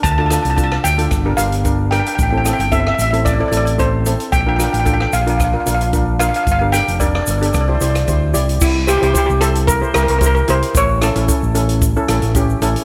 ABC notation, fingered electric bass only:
X:1
M:4/4
L:1/16
Q:1/4=112
K:Cmix
V:1 name="Fingered electric bass" clef=bass
D,,3 C,,3 D,,2 G,,,2 G,,,6 | A,,,3 G,,,3 A,,,4 A,,,6 | B,,,3 A,,,3 B,,,4 B,,,6 | G,,,3 F,,,3 G,,,2 C,,2 C,,2 D,,2 C,,2 |
C,,3 C,, z C,,4- C,, C,, C,,3 C,, z | A,,,3 A,,, z A,,,4- A,,, A,,, A,,,3 A,,, z |]